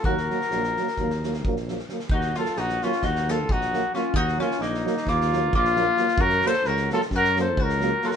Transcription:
<<
  \new Staff \with { instrumentName = "Trumpet" } { \time 9/8 \tempo 4. = 88 bes'2.~ bes'8 r4 | ges'8 a'8 ges'8 f'8 ges'8 a'8 ges'4 f'8 | ges'8 f'8 ees'4 f'4 f'4. | bes'8 c''8 bes'8 a'8 bes'8 c''8 bes'4 a'32 bes'32 r16 | }
  \new Staff \with { instrumentName = "Mandolin" } { \time 9/8 ges'2.~ ges'8 r4 | ees'8 f'8 ees'8 des'8 ees'8 f'8 ees'4 des'8 | ees'8 des'8 bes4 bes4 bes4. | ges'8 a'8 ges'8 f'8 ges'8 a'8 ges'4 f'32 ges'32 r16 | }
  \new Staff \with { instrumentName = "Euphonium" } { \time 9/8 bes8 bes8 bes8 bes8 bes8 bes8 bes8 bes8 bes8 | r8 bes8 r8 bes8 r8 bes8 r8 bes8 bes8 | r8 bes8 r8 bes8 r8 bes8 r8 bes8 bes8 | r8 bes8 r8 bes8 r8 bes8 r8 bes8 bes8 | }
  \new Staff \with { instrumentName = "Euphonium" } { \clef bass \time 9/8 ges8 ges8 ges8 ges8 ges8 ges8 ges8 ges8 ges8 | r8 ges8 r8 ges8 r8 ges8 r8 ges8 ges8 | r8 ges8 r8 ges8 r8 ges8 r8 ges8 ges8 | r8 ges8 r8 ges8 r8 ges8 r8 ges8 ges8 | }
  \new Staff \with { instrumentName = "Tuba" } { \clef bass \time 9/8 ees,4 bes,,4 ees,4 bes,,4. | ees,4 bes,,4 ees,4 bes,,4. | ees,4 bes,,4 ees,4 bes,,4. | ges,4 des,4 ges,4 des,4. | }
  \new DrumStaff \with { instrumentName = "Drums" } \drummode { \time 9/8 bd16 sn16 sn16 sn16 sn16 sn16 sn16 sn16 <bd sn>16 sn16 sn16 sn16 bd16 sn16 sn16 sn16 sn16 sn16 | bd16 sn16 sn16 sn16 sn16 sn16 sn16 sn16 <bd sn>16 sn16 sn8 bd16 sn16 sn8 sn8 | bd16 sn16 sn16 sn16 sn16 sn16 sn16 sn16 <bd sn>16 sn16 sn8 bd16 sn16 sn8 sn16 sn16 | bd16 sn16 sn16 sn16 sn16 sn16 sn16 sn16 <bd sn>16 sn16 sn8 bd16 sn16 sn8 sn16 sn16 | }
>>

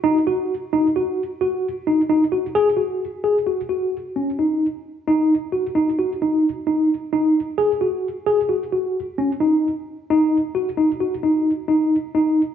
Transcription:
\new Staff \with { instrumentName = "Tine electric piano" } { \time 11/8 \key cis \dorian \tempo 4 = 131 dis'8 fis'4 dis'8 fis'4 fis'4 dis'8 dis'8 fis'8 | gis'8 fis'4 gis'8 fis'8 fis'4 cis'8 dis'4 r8 | dis'4 fis'8 dis'8 fis'8 dis'4 dis'4 dis'4 | gis'8 fis'4 gis'8 fis'8 fis'4 cis'8 dis'4 r8 |
dis'4 fis'8 dis'8 fis'8 dis'4 dis'4 dis'4 | }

